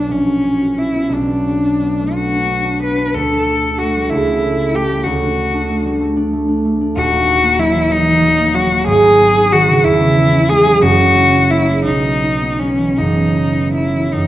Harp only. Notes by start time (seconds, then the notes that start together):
Already playing: B1 C#4 D4 F#4 F#5
0.09 A#1
0.26 F#4
0.44 C#4
0.61 F#4
0.78 C#4
0.94 B3
1.09 B1
1.27 D4
1.47 F#4
1.64 D4
1.82 B3
2.00 A3
2.16 B3
2.32 D4
2.49 B3
2.65 D4
2.81 B3
2.97 D4
3.14 D2
3.32 D4
3.48 F#4
3.65 D4
3.82 A3
3.96 G3
4.11 C#2
4.27 A4
4.43 E4
4.58 A4
4.74 A3
4.91 G3
5.06 D2
5.23 D4
5.38 F#4
5.54 D4
5.69 A3
5.85 G3
6.01 A3
6.16 D4
6.33 A3
6.48 D4
6.65 A3
6.81 D4
6.96 D#1 D#2
7.12 A#3
7.28 D#4
7.43 A#3
7.58 F#3
7.74 E3
7.90 F#3
8.08 A#3
8.22 F#3
8.40 A#3
8.54 F#3
8.71 A#3
8.86 G#1 G#2
9.04 D#4
9.19 B3
9.37 D#4
9.53 D#3
9.68 C#3
9.85 E2
10.00 C#4
10.17 E4
10.33 C#4
10.50 G#3
10.65 F#3
10.81 F#1 F#2
10.98 C#4
11.15 E4
11.30 C#4
11.50 A#3
11.68 G#3
11.85 B1
12.05 B3
12.24 D#4
12.42 B3
12.61 F#3
12.78 E3
12.97 F#1 F#2
13.16 B3
13.37 D#4
13.56 B3
13.76 F#3
13.94 E3
14.14 F#2